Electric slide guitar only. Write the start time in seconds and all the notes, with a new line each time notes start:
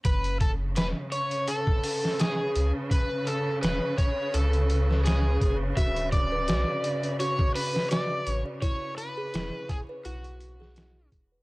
0.05 B4
0.41 A4
0.77 B4
1.12 C#5
1.48 A4
2.20 G#4
2.92 B4
3.27 A4
3.62 B4
3.97 C#5
4.34 A4
5.04 G#4
5.77 E5
6.12 D5
7.20 C#5
7.55 B4
7.92 D5
8.29 C#5
8.62 C#5
8.98 B4
9.69 G#4
10.05 F#4